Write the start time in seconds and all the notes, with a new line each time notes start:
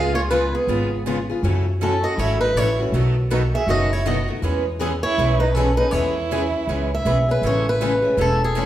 Already playing: C#2 C#3 G#3 B3 F4 G#4 F5
0.14 F4 C#5
0.28 C#3 F4 B4
0.32 G#3 B3 F4 G#4
0.52 B3 G#4
0.67 G#1 C#3 G#3 B3 F4 G#4
1.06 C#3 G#3 B3 F4 G#4
1.30 B3 F4 G#4
1.43 F#2 C#3 E3 F#3 A3 C#4 E4 F#4 A4
1.81 C#3 E3 F#3 A3 C#4 E4 F#4 A4
2.03 F#4 D#5
2.17 G#1 C#3 E3 F#3 A3 C#4 E4 F#4 A4 C#5
2.41 D#4 B4
2.55 A1 C#3 E3 F#3 A3 C#4 E4 F#4 A4 C#5
2.79 A3 C#4 F#4
2.92 B1 B2 D#3 F#3 A3 B3 D#4 F#4 A4
3.31 B2 D#3 F#3 A3 B3 D#4 F#4 A4 B4
3.54 G#4 E5
3.67 F#1 B2 D#3 F#3 A3 B3 D#4 F#4 A4 D#5
3.92 E4 C#5
4.05 B2 D#3 F#3 A3 B3 D#4 F#4 A4 D#5
4.28 A3 D#4 F#4
4.42 E2 E3 G#3 B3 C#4 G#4 B4
4.79 E3 G#3 B3 C#4 G#4 B4
5.03 E4 C#5
5.18 B1 E3 G#3 B3 C#4 G#4 B4
5.40 D#4 B4
5.54 E3 G#3 B3 C#4 G#4 A4 B4
5.77 B3 C#4 D#4 G#4 B4
5.91 E2 E3 G#3 B3 C#4 E4 G#4 B4 C#5
6.31 E3 G#3 B3 C#4 G#4 B4
6.67 C#2 E3 G#3 B3 C#4 G#4 B4
6.95 E5
7.05 B1 E3 G#3 B3 C#4 G#4 B4
7.29 B3 C#4 G#4 B4
7.42 A1 C#3 E3 G#3 A3 C#4 E4 A4
7.46 G#4 C#5
7.69 B4
7.81 C#3 E3 G#3 A3 C#4 E4 G#4 A4
8.02 A3 C#4 G#4
8.17 E1 C#3 E3 G#3 A3 C#4 E4 G#4 A4
8.21 A4
8.44 G#4
8.55 C#3 E3 G#3 A3 C#4 E4 G#4 A4